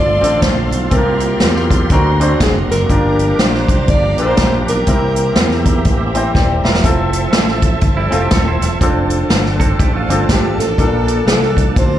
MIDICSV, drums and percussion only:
0, 0, Header, 1, 2, 480
1, 0, Start_track
1, 0, Key_signature, -1, "major"
1, 0, Tempo, 493016
1, 894, Time_signature, 4, 2, 24, 8
1, 11672, End_track
2, 0, Start_track
2, 0, Title_t, "Drums"
2, 230, Note_on_c, 9, 42, 75
2, 327, Note_off_c, 9, 42, 0
2, 410, Note_on_c, 9, 36, 85
2, 410, Note_on_c, 9, 42, 84
2, 411, Note_on_c, 9, 38, 108
2, 507, Note_off_c, 9, 42, 0
2, 508, Note_off_c, 9, 36, 0
2, 509, Note_off_c, 9, 38, 0
2, 703, Note_on_c, 9, 42, 69
2, 800, Note_off_c, 9, 42, 0
2, 886, Note_on_c, 9, 42, 70
2, 890, Note_on_c, 9, 36, 85
2, 983, Note_off_c, 9, 42, 0
2, 988, Note_off_c, 9, 36, 0
2, 1170, Note_on_c, 9, 42, 73
2, 1267, Note_off_c, 9, 42, 0
2, 1364, Note_on_c, 9, 38, 97
2, 1369, Note_on_c, 9, 42, 76
2, 1462, Note_off_c, 9, 38, 0
2, 1466, Note_off_c, 9, 42, 0
2, 1517, Note_on_c, 9, 38, 31
2, 1614, Note_off_c, 9, 38, 0
2, 1660, Note_on_c, 9, 36, 85
2, 1664, Note_on_c, 9, 42, 74
2, 1758, Note_off_c, 9, 36, 0
2, 1761, Note_off_c, 9, 42, 0
2, 1846, Note_on_c, 9, 42, 66
2, 1852, Note_on_c, 9, 36, 107
2, 1944, Note_off_c, 9, 42, 0
2, 1949, Note_off_c, 9, 36, 0
2, 2149, Note_on_c, 9, 42, 77
2, 2247, Note_off_c, 9, 42, 0
2, 2340, Note_on_c, 9, 42, 88
2, 2341, Note_on_c, 9, 36, 90
2, 2342, Note_on_c, 9, 38, 104
2, 2438, Note_off_c, 9, 36, 0
2, 2438, Note_off_c, 9, 42, 0
2, 2439, Note_off_c, 9, 38, 0
2, 2639, Note_on_c, 9, 38, 33
2, 2644, Note_on_c, 9, 42, 66
2, 2737, Note_off_c, 9, 38, 0
2, 2741, Note_off_c, 9, 42, 0
2, 2818, Note_on_c, 9, 42, 69
2, 2820, Note_on_c, 9, 36, 87
2, 2915, Note_off_c, 9, 42, 0
2, 2917, Note_off_c, 9, 36, 0
2, 3109, Note_on_c, 9, 42, 74
2, 3206, Note_off_c, 9, 42, 0
2, 3302, Note_on_c, 9, 38, 95
2, 3307, Note_on_c, 9, 42, 81
2, 3400, Note_off_c, 9, 38, 0
2, 3404, Note_off_c, 9, 42, 0
2, 3451, Note_on_c, 9, 38, 29
2, 3548, Note_off_c, 9, 38, 0
2, 3589, Note_on_c, 9, 36, 86
2, 3592, Note_on_c, 9, 42, 76
2, 3686, Note_off_c, 9, 36, 0
2, 3689, Note_off_c, 9, 42, 0
2, 3776, Note_on_c, 9, 42, 66
2, 3780, Note_on_c, 9, 36, 101
2, 3874, Note_off_c, 9, 42, 0
2, 3878, Note_off_c, 9, 36, 0
2, 4068, Note_on_c, 9, 42, 75
2, 4165, Note_off_c, 9, 42, 0
2, 4256, Note_on_c, 9, 42, 85
2, 4257, Note_on_c, 9, 38, 105
2, 4264, Note_on_c, 9, 36, 89
2, 4353, Note_off_c, 9, 42, 0
2, 4355, Note_off_c, 9, 38, 0
2, 4361, Note_off_c, 9, 36, 0
2, 4552, Note_on_c, 9, 38, 32
2, 4557, Note_on_c, 9, 42, 67
2, 4650, Note_off_c, 9, 38, 0
2, 4654, Note_off_c, 9, 42, 0
2, 4737, Note_on_c, 9, 42, 80
2, 4743, Note_on_c, 9, 36, 84
2, 4834, Note_off_c, 9, 42, 0
2, 4841, Note_off_c, 9, 36, 0
2, 5024, Note_on_c, 9, 42, 64
2, 5121, Note_off_c, 9, 42, 0
2, 5216, Note_on_c, 9, 38, 100
2, 5220, Note_on_c, 9, 42, 75
2, 5313, Note_off_c, 9, 38, 0
2, 5318, Note_off_c, 9, 42, 0
2, 5366, Note_on_c, 9, 38, 30
2, 5463, Note_off_c, 9, 38, 0
2, 5505, Note_on_c, 9, 42, 77
2, 5507, Note_on_c, 9, 36, 80
2, 5602, Note_off_c, 9, 42, 0
2, 5605, Note_off_c, 9, 36, 0
2, 5692, Note_on_c, 9, 42, 64
2, 5699, Note_on_c, 9, 36, 102
2, 5789, Note_off_c, 9, 42, 0
2, 5796, Note_off_c, 9, 36, 0
2, 5984, Note_on_c, 9, 42, 80
2, 6081, Note_off_c, 9, 42, 0
2, 6181, Note_on_c, 9, 38, 51
2, 6182, Note_on_c, 9, 36, 89
2, 6279, Note_off_c, 9, 36, 0
2, 6279, Note_off_c, 9, 38, 0
2, 6473, Note_on_c, 9, 38, 77
2, 6567, Note_off_c, 9, 38, 0
2, 6567, Note_on_c, 9, 38, 79
2, 6657, Note_on_c, 9, 42, 76
2, 6658, Note_on_c, 9, 36, 86
2, 6665, Note_off_c, 9, 38, 0
2, 6754, Note_off_c, 9, 42, 0
2, 6755, Note_off_c, 9, 36, 0
2, 6942, Note_on_c, 9, 42, 68
2, 7039, Note_off_c, 9, 42, 0
2, 7135, Note_on_c, 9, 38, 102
2, 7139, Note_on_c, 9, 42, 79
2, 7232, Note_off_c, 9, 38, 0
2, 7236, Note_off_c, 9, 42, 0
2, 7284, Note_on_c, 9, 38, 28
2, 7381, Note_off_c, 9, 38, 0
2, 7420, Note_on_c, 9, 42, 75
2, 7423, Note_on_c, 9, 36, 82
2, 7517, Note_off_c, 9, 42, 0
2, 7520, Note_off_c, 9, 36, 0
2, 7605, Note_on_c, 9, 42, 66
2, 7613, Note_on_c, 9, 36, 100
2, 7703, Note_off_c, 9, 42, 0
2, 7711, Note_off_c, 9, 36, 0
2, 7904, Note_on_c, 9, 42, 73
2, 8001, Note_off_c, 9, 42, 0
2, 8088, Note_on_c, 9, 42, 90
2, 8090, Note_on_c, 9, 38, 105
2, 8097, Note_on_c, 9, 36, 91
2, 8186, Note_off_c, 9, 42, 0
2, 8187, Note_off_c, 9, 38, 0
2, 8194, Note_off_c, 9, 36, 0
2, 8388, Note_on_c, 9, 38, 33
2, 8392, Note_on_c, 9, 42, 68
2, 8485, Note_off_c, 9, 38, 0
2, 8489, Note_off_c, 9, 42, 0
2, 8576, Note_on_c, 9, 36, 88
2, 8577, Note_on_c, 9, 42, 78
2, 8674, Note_off_c, 9, 36, 0
2, 8675, Note_off_c, 9, 42, 0
2, 8860, Note_on_c, 9, 42, 66
2, 8957, Note_off_c, 9, 42, 0
2, 9055, Note_on_c, 9, 38, 95
2, 9060, Note_on_c, 9, 42, 79
2, 9153, Note_off_c, 9, 38, 0
2, 9157, Note_off_c, 9, 42, 0
2, 9207, Note_on_c, 9, 38, 30
2, 9304, Note_off_c, 9, 38, 0
2, 9345, Note_on_c, 9, 36, 85
2, 9351, Note_on_c, 9, 42, 77
2, 9443, Note_off_c, 9, 36, 0
2, 9449, Note_off_c, 9, 42, 0
2, 9536, Note_on_c, 9, 36, 103
2, 9537, Note_on_c, 9, 42, 64
2, 9634, Note_off_c, 9, 36, 0
2, 9634, Note_off_c, 9, 42, 0
2, 9834, Note_on_c, 9, 42, 73
2, 9931, Note_off_c, 9, 42, 0
2, 10019, Note_on_c, 9, 36, 87
2, 10019, Note_on_c, 9, 42, 90
2, 10020, Note_on_c, 9, 38, 103
2, 10116, Note_off_c, 9, 36, 0
2, 10116, Note_off_c, 9, 42, 0
2, 10118, Note_off_c, 9, 38, 0
2, 10316, Note_on_c, 9, 38, 33
2, 10320, Note_on_c, 9, 42, 66
2, 10413, Note_off_c, 9, 38, 0
2, 10418, Note_off_c, 9, 42, 0
2, 10498, Note_on_c, 9, 36, 90
2, 10502, Note_on_c, 9, 42, 71
2, 10595, Note_off_c, 9, 36, 0
2, 10599, Note_off_c, 9, 42, 0
2, 10789, Note_on_c, 9, 42, 70
2, 10886, Note_off_c, 9, 42, 0
2, 10979, Note_on_c, 9, 38, 92
2, 10983, Note_on_c, 9, 42, 82
2, 11076, Note_off_c, 9, 38, 0
2, 11081, Note_off_c, 9, 42, 0
2, 11122, Note_on_c, 9, 38, 31
2, 11220, Note_off_c, 9, 38, 0
2, 11263, Note_on_c, 9, 36, 80
2, 11271, Note_on_c, 9, 42, 74
2, 11360, Note_off_c, 9, 36, 0
2, 11368, Note_off_c, 9, 42, 0
2, 11451, Note_on_c, 9, 42, 69
2, 11453, Note_on_c, 9, 36, 106
2, 11549, Note_off_c, 9, 42, 0
2, 11550, Note_off_c, 9, 36, 0
2, 11672, End_track
0, 0, End_of_file